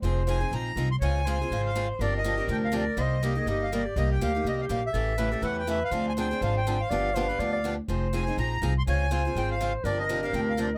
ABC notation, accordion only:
X:1
M:4/4
L:1/8
Q:"Swing" 1/4=245
K:Cm
V:1 name="Accordion"
z2 a2 b3 c' | a4- a f2 z | d e3 g f d2 | e4- e f d2 |
e g f2 e f f =e- | =e4 ^f g e =f- | f a g2 f g g f- | f6- f z |
z2 a2 b3 c' | a4 g f2 z | d e2 f g f d e |]